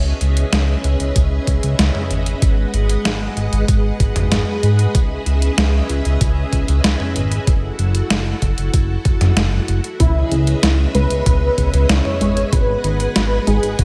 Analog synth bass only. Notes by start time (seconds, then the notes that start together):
Already playing: C#2
0.21 C#2
0.53 C#2
0.84 C#2
1.00 C#2
1.16 C#2
1.47 C#2
1.63 C#2
1.79 C#2
2.11 G#1
2.42 G#1
2.74 G#1
3.05 G#1
3.37 G#1
3.53 G#1
3.68 G#1
4.00 G#1
4.16 G#1
4.32 G#1
4.63 G#2
4.95 C#2
5.26 C#2
5.58 C#2
5.89 C#2
6.05 C#2
6.21 C#2
6.53 C#2
6.68 C#2
6.84 C#2
7.16 G#1
7.47 F#1
7.79 F#1
8.10 F#1
8.42 F#1
8.58 F#1
8.74 F#1
9.05 F#1
9.21 F#1
9.37 F#1
9.68 F#1
10.00 C#2
10.31 C#2
10.63 C#2
10.95 C#2
11.10 C#2
11.26 C#2
11.58 C#2
11.74 C#2
11.89 C#2
12.21 G#1
12.53 G#1
12.84 G#1
13.16 G#1
13.47 G#1
13.63 G#1
13.79 G#1